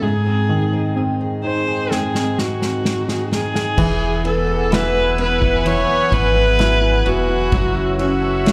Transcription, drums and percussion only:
1.91 snare
2.15 snare
2.38 snare
2.62 snare
2.85 snare
3.09 snare
3.32 snare
3.55 snare
3.78 kick, crash
4.25 ride
4.72 snare, ride
5.18 ride
5.42 kick
5.66 ride
6.12 kick, ride
6.59 snare, ride
7.06 ride
7.52 kick, ride
7.99 ride
8.46 snare, ride

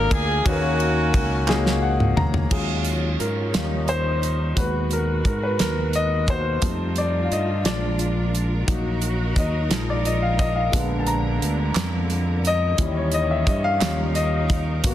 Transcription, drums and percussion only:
0.11 kick, ride
0.46 kick, ride
0.80 ride
1.14 kick, ride
1.48 snare, clap
1.66 snare
2.00 mid tom
2.17 floor tom
2.34 floor tom
2.51 kick, crash
2.84 closed hi-hat
3.20 closed hi-hat
3.54 snare, closed hi-hat
3.88 closed hi-hat
4.23 closed hi-hat
4.57 kick, closed hi-hat
4.91 closed hi-hat
5.25 kick, closed hi-hat
5.59 snare, closed hi-hat
5.93 closed hi-hat
6.28 kick, closed hi-hat
6.62 kick, closed hi-hat
6.96 closed hi-hat
7.32 closed hi-hat
7.65 snare, closed hi-hat
7.99 closed hi-hat
8.35 closed hi-hat
8.68 kick, closed hi-hat
9.02 closed hi-hat
9.36 kick, closed hi-hat
9.71 snare, closed hi-hat
10.05 closed hi-hat
10.39 kick, closed hi-hat
10.73 kick, closed hi-hat
11.07 closed hi-hat
11.42 closed hi-hat
11.75 snare, clap, closed hi-hat
12.10 closed hi-hat
12.45 closed hi-hat
12.78 kick, closed hi-hat
13.12 closed hi-hat
13.47 kick, closed hi-hat
13.81 snare, clap, closed hi-hat
14.15 closed hi-hat
14.50 kick, closed hi-hat
14.84 kick, closed hi-hat

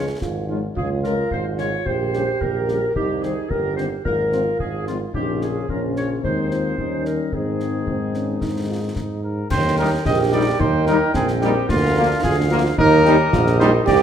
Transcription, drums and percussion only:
0.22 concert bass drum, snare
0.76 concert bass drum
1.04 snare
1.31 concert bass drum
1.58 snare
1.86 concert bass drum
2.14 snare
2.41 concert bass drum
2.69 snare
2.96 concert bass drum
3.23 snare
3.51 concert bass drum
3.78 snare
4.05 concert bass drum
4.33 snare
4.60 concert bass drum
4.87 snare
5.14 concert bass drum
5.42 snare
5.69 concert bass drum
5.96 snare
6.24 concert bass drum
6.51 snare
6.78 concert bass drum
7.05 snare
7.32 concert bass drum
7.60 snare
7.87 concert bass drum
8.14 snare
8.41 concert bass drum, snare
8.96 concert bass drum, snare
9.51 concert bass drum, snare, crash
10.05 concert bass drum, snare
10.60 concert bass drum
10.87 snare
11.14 concert bass drum, snare
11.28 snare
11.42 snare
11.69 concert bass drum, snare
12.24 concert bass drum, snare
12.78 concert bass drum
13.06 snare
13.33 concert bass drum, snare
13.47 snare
13.60 snare
13.88 concert bass drum, snare, crash

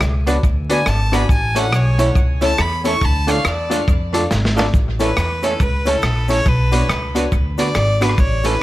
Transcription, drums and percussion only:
0.01 cross-stick, cabasa
0.27 closed hi-hat, cabasa
0.43 kick, cabasa
0.70 closed hi-hat, cabasa
0.86 cross-stick, cabasa
1.13 cross-stick, closed hi-hat, cabasa
1.29 kick, cabasa
1.56 closed hi-hat, cabasa
1.73 cross-stick, cabasa
1.99 closed hi-hat, cabasa
2.15 kick, cabasa
2.41 closed hi-hat, cabasa
2.58 cross-stick, cabasa
2.85 closed hi-hat, cabasa
3.01 kick, cabasa
3.28 closed hi-hat, cabasa
3.45 cross-stick, cabasa
3.71 closed hi-hat, cabasa
3.88 kick, cabasa
4.14 closed hi-hat, cabasa
4.31 snare, cabasa
4.45 snare
4.58 snare, cabasa
4.74 kick, cabasa
5.00 closed hi-hat, cabasa
5.17 cross-stick, cabasa
5.43 closed hi-hat, cabasa
5.60 kick, cabasa
5.86 closed hi-hat, cabasa
6.02 cross-stick, cabasa
6.28 closed hi-hat, cabasa
6.45 kick, cabasa
6.72 closed hi-hat, cabasa
6.89 cross-stick, cabasa
7.16 closed hi-hat, cabasa
7.32 kick, cabasa
7.58 closed hi-hat, cabasa
7.75 cross-stick, cabasa
8.01 cross-stick, closed hi-hat, cabasa
8.09 cross-stick
8.18 kick, cabasa
8.44 closed hi-hat, cabasa

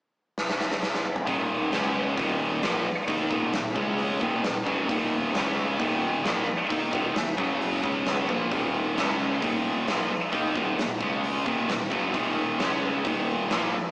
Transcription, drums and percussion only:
0.38 snare
0.50 snare
0.61 snare
0.72 snare
0.83 snare
0.95 snare
1.05 mid tom
1.16 mid tom
1.27 kick, open hi-hat
1.72 snare, open hi-hat
2.18 kick, open hi-hat
2.62 snare, open hi-hat
3.08 kick, open hi-hat
3.31 kick
3.53 snare, open hi-hat
3.76 kick
3.98 open hi-hat
4.21 kick
4.44 snare, open hi-hat
4.67 kick
4.89 kick, open hi-hat
5.34 snare, open hi-hat
5.79 kick, open hi-hat
6.25 snare, open hi-hat
6.70 kick, open hi-hat
6.93 kick
7.15 snare, open hi-hat
7.38 kick
7.61 open hi-hat
7.84 kick
8.06 snare, open hi-hat
8.29 kick
8.52 kick, open hi-hat
8.97 snare, open hi-hat
9.42 kick, open hi-hat
9.88 snare, open hi-hat
10.32 kick, open hi-hat
10.55 kick
10.78 snare, open hi-hat
11.01 kick
11.24 open hi-hat
11.46 kick
11.69 snare, open hi-hat
11.92 kick
12.14 kick, open hi-hat
12.59 snare, open hi-hat
13.05 kick, open hi-hat
13.50 snare, open hi-hat

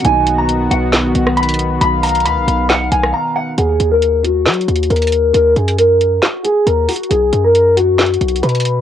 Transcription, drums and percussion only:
0.05 closed hi-hat
0.27 closed hi-hat
0.49 closed hi-hat
0.71 closed hi-hat
0.93 snare, clap, closed hi-hat
1.15 closed hi-hat
1.27 cross-stick
1.37 closed hi-hat
1.43 closed hi-hat
1.49 closed hi-hat
1.54 closed hi-hat
1.59 closed hi-hat
1.81 closed hi-hat
2.03 closed hi-hat, open hi-hat
2.09 closed hi-hat
2.15 closed hi-hat
2.20 closed hi-hat
2.26 closed hi-hat
2.48 closed hi-hat
2.70 snare, clap, closed hi-hat
2.92 closed hi-hat
3.03 cross-stick
3.58 closed hi-hat
3.80 closed hi-hat
4.02 closed hi-hat
4.24 closed hi-hat
4.46 snare, clap, closed hi-hat
4.53 closed hi-hat
4.61 closed hi-hat
4.68 closed hi-hat
4.75 closed hi-hat
4.83 closed hi-hat
4.90 closed hi-hat
4.96 closed hi-hat
5.02 closed hi-hat
5.07 closed hi-hat
5.12 closed hi-hat
5.34 closed hi-hat
5.56 closed hi-hat
5.68 closed hi-hat
5.78 closed hi-hat
6.01 closed hi-hat
6.22 snare, clap, closed hi-hat
6.45 closed hi-hat
6.67 closed hi-hat
6.89 closed hi-hat, open hi-hat
6.96 closed hi-hat
7.03 closed hi-hat
7.11 closed hi-hat
7.33 closed hi-hat
7.55 closed hi-hat
7.77 closed hi-hat
7.99 snare, clap, closed hi-hat
8.06 closed hi-hat
8.14 closed hi-hat
8.21 closed hi-hat
8.28 closed hi-hat
8.36 closed hi-hat
8.43 closed hi-hat
8.49 closed hi-hat
8.55 closed hi-hat
8.60 closed hi-hat
8.65 closed hi-hat

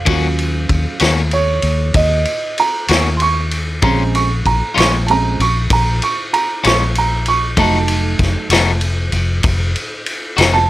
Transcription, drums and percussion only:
0.06 kick, ride
0.39 ride
0.69 kick, ride
1.00 snare, ride
1.31 ride
1.62 ride
1.94 kick, ride
2.25 ride
2.58 ride
2.88 snare, ride
3.20 ride
3.51 ride
3.82 kick, ride
4.15 ride
4.46 kick, ride
4.77 snare, ride
5.08 ride
5.40 ride
5.70 kick, ride
6.02 ride
6.34 ride
6.64 snare, ride
6.95 ride
7.26 ride
7.57 kick, ride
7.88 ride
8.19 kick, snare, ride
8.50 snare, ride
8.81 ride
9.12 ride
9.43 kick, ride
9.76 ride
10.06 ride
10.38 snare, ride

